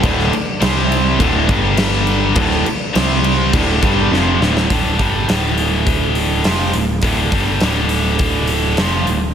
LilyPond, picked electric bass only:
\new Staff \with { instrumentName = "Picked electric bass" } { \clef bass \time 4/4 \key d \minor \tempo 4 = 103 d,,8 r8 c,4 d,,8 g,,4. | d,,8 r8 c,4 d,,8 g,,8 f,,8 d,,8 | d,,8 g,,8 d,,2 f,,8 d,,8 | d,,8 g,,8 d,,2 f,,8 d,,8 | }